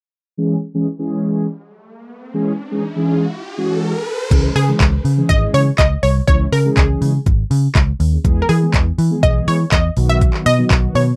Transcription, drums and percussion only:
4.31 kick loud
4.31 closed hi-hat medium
4.31 crash loud
4.56 open hi-hat medium
4.80 kick loud
4.80 clap loud
4.80 closed hi-hat medium
5.05 open hi-hat medium
5.30 kick loud
5.30 closed hi-hat medium
5.54 open hi-hat medium
5.79 kick loud
5.79 clap loud
5.79 closed hi-hat medium
6.03 open hi-hat medium
6.28 kick loud
6.28 closed hi-hat medium
6.53 open hi-hat medium
6.77 kick loud
6.77 clap loud
6.77 closed hi-hat medium
7.02 open hi-hat medium
7.26 kick loud
7.26 closed hi-hat medium
7.51 open hi-hat medium
7.75 kick loud
7.75 clap loud
7.75 closed hi-hat medium
8.00 open hi-hat medium
8.25 kick loud
8.25 closed hi-hat medium
8.49 open hi-hat medium
8.74 kick loud
8.74 clap loud
8.74 closed hi-hat medium
8.98 open hi-hat medium
9.23 kick loud
9.23 closed hi-hat medium
9.48 open hi-hat medium
9.72 kick loud
9.72 clap loud
9.72 closed hi-hat medium
9.97 open hi-hat medium
10.21 kick loud
10.21 closed hi-hat medium
10.34 clap medium
10.46 open hi-hat medium
10.71 kick loud
10.71 clap loud
10.71 closed hi-hat medium
10.95 open hi-hat medium

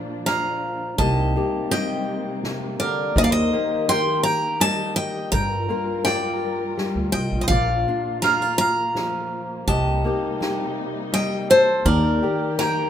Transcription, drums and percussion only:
0.26 snare medium
0.26 ride soft
0.98 kick medium
0.98 ride soft
1.71 snare medium
1.71 ride soft
2.43 snare medium
2.43 ride soft
3.16 kick loud
3.88 snare medium
3.88 ride medium
4.61 snare medium
4.61 ride medium
5.33 kick medium
5.33 ride soft
5.69 ride medium
6.05 snare medium
6.77 snare medium
6.77 ride soft
7.49 kick loud
7.49 ride soft
8.22 snare medium
8.22 ride medium
8.95 snare medium
8.95 ride medium
9.68 kick medium
9.68 ride medium
10.04 ride medium
10.41 snare medium
10.41 ride medium
11.13 snare medium
11.13 ride medium
11.86 kick medium
12.58 snare medium

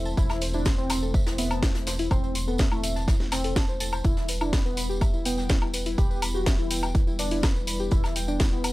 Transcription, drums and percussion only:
0.05 tambourine soft
0.17 kick loud
0.17 closed hi-hat medium
0.17 tambourine medium
0.29 snare soft
0.29 tambourine soft
0.29 low woodblock medium
0.41 closed hi-hat medium
0.41 open hi-hat loud
0.41 tambourine medium
0.53 tambourine soft
0.65 kick loud
0.65 snare loud
0.65 closed hi-hat loud
0.65 tambourine medium
0.78 tambourine soft
0.90 snare loud
0.90 closed hi-hat medium
0.90 open hi-hat loud
0.90 tambourine medium
0.90 low woodblock medium
1.03 tambourine soft
1.14 kick loud
1.14 closed hi-hat medium
1.14 tambourine medium
1.26 snare loud
1.26 closed hi-hat medium
1.26 tambourine soft
1.38 open hi-hat loud
1.38 tambourine medium
1.51 closed hi-hat medium
1.51 tambourine soft
1.51 low woodblock medium
1.63 kick loud
1.63 snare loud
1.63 closed hi-hat medium
1.63 tambourine medium
1.75 snare loud
1.75 closed hi-hat medium
1.75 tambourine soft
1.87 snare loud
1.87 closed hi-hat medium
1.87 open hi-hat loud
1.87 tambourine medium
1.99 open hi-hat medium
1.99 tambourine soft
2.11 kick loud
2.11 closed hi-hat medium
2.11 tambourine soft
2.11 low woodblock medium
2.24 tambourine soft
2.35 closed hi-hat medium
2.35 open hi-hat loud
2.35 tambourine medium
2.48 tambourine soft
2.58 kick loud
2.58 snare loud
2.58 closed hi-hat medium
2.58 tambourine medium
2.72 tambourine soft
2.72 low woodblock medium
2.83 closed hi-hat medium
2.83 open hi-hat loud
2.83 tambourine medium
2.96 snare soft
2.96 tambourine soft
3.08 kick loud
3.08 snare loud
3.08 closed hi-hat medium
3.08 tambourine soft
3.20 snare soft
3.20 tambourine soft
3.32 snare loud
3.32 closed hi-hat medium
3.32 open hi-hat loud
3.32 tambourine medium
3.32 low woodblock medium
3.44 open hi-hat medium
3.44 tambourine soft
3.56 kick loud
3.56 snare loud
3.56 closed hi-hat medium
3.56 tambourine medium
3.69 tambourine soft
3.80 closed hi-hat medium
3.80 open hi-hat loud
3.80 tambourine medium
3.93 tambourine soft
3.93 low woodblock medium
4.04 kick loud
4.04 closed hi-hat medium
4.04 tambourine medium
4.17 snare medium
4.17 tambourine soft
4.28 closed hi-hat medium
4.28 open hi-hat loud
4.28 tambourine medium
4.41 tambourine soft
4.41 low woodblock medium
4.53 kick loud
4.53 snare loud
4.53 closed hi-hat medium
4.53 tambourine medium
4.66 tambourine soft
4.77 closed hi-hat medium
4.77 open hi-hat loud
4.77 tambourine medium
4.91 tambourine soft
5.01 kick loud
5.01 closed hi-hat medium
5.01 tambourine medium
5.01 low woodblock medium
5.14 tambourine soft
5.25 closed hi-hat medium
5.25 open hi-hat loud
5.25 tambourine loud
5.38 snare soft
5.38 tambourine soft
5.49 kick loud
5.49 snare loud
5.49 closed hi-hat medium
5.49 tambourine medium
5.62 tambourine soft
5.62 low woodblock medium
5.74 closed hi-hat medium
5.74 open hi-hat loud
5.74 tambourine medium
5.86 open hi-hat medium
5.86 tambourine soft
5.98 kick loud
5.98 closed hi-hat medium
5.98 tambourine medium
6.11 tambourine soft
6.22 closed hi-hat medium
6.22 open hi-hat loud
6.22 tambourine medium
6.22 low woodblock medium
6.35 tambourine soft
6.46 kick loud
6.46 snare loud
6.46 closed hi-hat loud
6.46 tambourine medium
6.59 tambourine soft
6.71 closed hi-hat medium
6.71 open hi-hat loud
6.71 tambourine loud
6.83 snare soft
6.83 tambourine soft
6.83 low woodblock medium
6.95 kick loud
6.95 closed hi-hat medium
6.95 tambourine medium
7.07 tambourine soft
7.19 open hi-hat loud
7.19 open hi-hat medium
7.19 tambourine loud
7.31 open hi-hat medium
7.31 tambourine soft
7.43 kick loud
7.43 snare loud
7.43 closed hi-hat loud
7.43 tambourine medium
7.43 low woodblock medium
7.56 tambourine soft
7.67 closed hi-hat medium
7.67 open hi-hat loud
7.67 tambourine loud
7.79 tambourine soft
7.91 kick loud
7.91 closed hi-hat medium
7.91 tambourine medium
8.03 snare medium
8.03 tambourine soft
8.03 low woodblock medium
8.16 closed hi-hat medium
8.16 open hi-hat loud
8.16 tambourine medium
8.28 tambourine soft
8.40 kick loud
8.40 snare loud
8.40 closed hi-hat loud
8.40 tambourine medium
8.52 tambourine soft
8.64 closed hi-hat medium
8.64 open hi-hat loud
8.64 tambourine medium
8.64 low woodblock medium

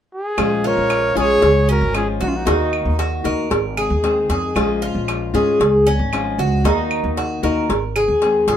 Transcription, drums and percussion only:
0.38 cowbell loud
0.38 claves medium
0.90 cowbell medium
0.90 claves medium
1.42 cowbell loud
1.94 cowbell medium
1.94 claves medium
2.47 cowbell loud
2.73 claves medium
2.99 cowbell medium
3.51 cowbell loud
3.77 claves medium
4.04 cowbell medium
4.30 cowbell medium
4.56 cowbell loud
4.56 claves medium
5.08 cowbell medium
5.08 claves medium
5.61 cowbell loud
6.13 cowbell medium
6.13 claves medium
6.65 cowbell loud
6.91 claves medium
7.17 cowbell medium
7.70 cowbell loud
7.96 claves medium
8.22 cowbell medium
8.48 cowbell medium

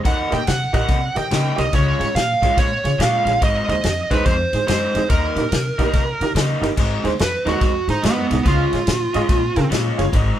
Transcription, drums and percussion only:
0.05 kick loud
0.05 snare soft
0.05 ride medium
0.32 snare soft
0.32 ride medium
0.47 snare loud
0.47 ride medium
0.74 kick medium
0.74 snare soft
0.74 ride medium
0.88 kick loud
0.88 snare soft
0.88 ride medium
1.16 snare soft
1.16 ride medium
1.31 snare loud
1.31 ride medium
1.58 snare soft
1.58 ride medium
1.73 kick loud
1.73 snare soft
1.73 ride medium
2.01 snare soft
2.01 ride medium
2.16 snare loud
2.16 ride medium
2.42 kick medium
2.42 snare soft
2.42 ride medium
2.58 kick loud
2.58 snare soft
2.58 ride medium
2.85 snare soft
2.85 ride medium
3.00 snare loud
3.00 ride medium
3.27 snare soft
3.27 ride medium
3.42 kick loud
3.42 snare soft
3.42 ride medium
3.69 snare soft
3.69 ride medium
3.84 snare loud
3.84 ride medium
4.11 kick medium
4.11 snare soft
4.11 ride medium
4.26 kick loud
4.26 snare soft
4.26 ride medium
4.53 snare soft
4.53 ride medium
4.68 snare loud
4.68 ride medium
4.95 snare soft
4.95 ride medium
5.10 kick loud
5.10 snare soft
5.10 ride medium
5.36 snare soft
5.36 ride medium
5.52 snare loud
5.52 ride medium
5.79 kick medium
5.79 snare soft
5.79 ride medium
5.93 kick loud
5.93 snare soft
5.93 ride medium
6.21 snare soft
6.21 ride medium
6.36 snare loud
6.36 ride medium
6.63 snare soft
6.63 ride medium
6.77 kick medium
6.77 snare soft
6.77 crash medium
7.05 snare soft
7.05 ride medium
7.19 snare loud
7.19 ride medium
7.47 snare soft
7.47 ride medium
7.61 kick loud
7.61 snare soft
7.61 ride medium
7.89 snare soft
7.89 ride medium
8.03 snare loud
8.03 ride medium
8.31 snare soft
8.31 ride medium
8.46 kick loud
8.46 snare soft
8.46 ride medium
8.73 snare soft
8.73 ride medium
8.87 snare loud
8.87 ride medium
9.14 snare soft
9.14 ride medium
9.29 kick loud
9.29 snare soft
9.29 ride medium
9.56 snare soft
9.56 ride medium
9.72 snare loud
9.72 ride medium
9.99 snare soft
9.99 ride medium
10.13 kick loud
10.13 snare soft
10.13 ride medium

